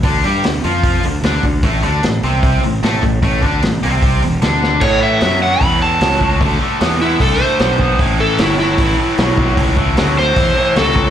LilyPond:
<<
  \new Staff \with { instrumentName = "Electric slide guitar" } { \time 4/4 \key d \major \tempo 4 = 151 r1 | r1 | r1 | cis''8 e''4 fis''8 b''8 a''4.~ |
a''8 r4 e'8 a'8 c''4. | r8 a'8 e'8 e'2~ e'8~ | e'8 r4 c''4. a'4 | }
  \new Staff \with { instrumentName = "Overdriven electric guitar" } { \clef bass \time 4/4 \key d \major <d d'>8 <g g'>8 d8 <f f'>4 d8 <d d'>8 d8 | <a, a>8 <d d'>8 a,8 <c c'>4 a,8 <a, a>8 a,8 | <a, a>8 <d d'>8 a,8 <c c'>4 e,8 <d d'>4 | <a, e>8 <a, e>8 <a, fis>8 <a, fis>8 <a, e>8 <a, e>8 <a, fis>8 <a, fis>8 |
<d a>8 <d a>8 <d b>8 <d b>8 <d a>8 <d a>8 <d b>8 <d b>8 | <a, e>8 <a, e>8 <a, fis>8 <a, fis>8 <a, e>8 <a, e>8 <a, fis>8 <a, fis>8 | <a, e>8 <a, e>8 <a, fis>8 <a, fis>8 <a, e>8 <a, e>8 <a, fis>8 <a, fis>8 | }
  \new Staff \with { instrumentName = "Fingered electric bass" } { \clef bass \time 4/4 \key d \major d,8 g,8 d,8 f,4 d,8 d,8 d,8 | a,,8 d,8 a,,8 c,4 a,,8 a,,8 a,,8 | a,,8 d,8 a,,8 c,4 e,,8 d,4 | a,4 fis,4 e,4 cis,4 |
d,8 r8 e,4 c,8 r8 b,,4 | a,,4 g,,4 a,,8 r8 b,,4 | cis,4 d,4 e,8 r8 cis,4 | }
  \new DrumStaff \with { instrumentName = "Drums" } \drummode { \time 4/4 <hho bd>8 hho8 <hho sn>8 hho8 <hho bd>8 hho8 <hho sn>8 <hho bd>8 | <hho bd>8 hho8 <hho sn>8 hho8 <hho bd>8 hho8 <hho sn>8 <hho bd>8 | <hho bd>8 <hho bd>8 <hho sn>8 hho8 <hho bd>8 hho8 <hho sn>8 sn8 | <cymc bd>4 <hho sn>4 <hho bd>4 <hho sn>8 bd8 |
<hho bd>4 <hho sn>4 <hho bd>4 <hho sn>8 bd8 | <hho bd>4 <hho sn>4 <hho bd>4 <hho sn>8 bd8 | <hho bd>8 bd8 <hho sn>4 <hho bd>4 <hho sn>8 <bd sn>8 | }
>>